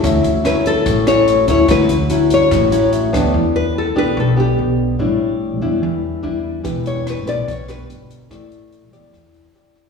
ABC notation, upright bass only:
X:1
M:4/4
L:1/8
Q:1/4=145
K:D
V:1 name="Upright bass" clef=bass
D,, D,, z2 A,,,3 D,, | D,, D,, z2 A,,,3 D,, | E,,3 B,,, B,,,2 B,,,2 | A,,,3 E,, E,,2 E,,2 |
E,,,3 B,,, B,,,2 G,,,2 | A,,,3 E,, E,,2 E,,2 |]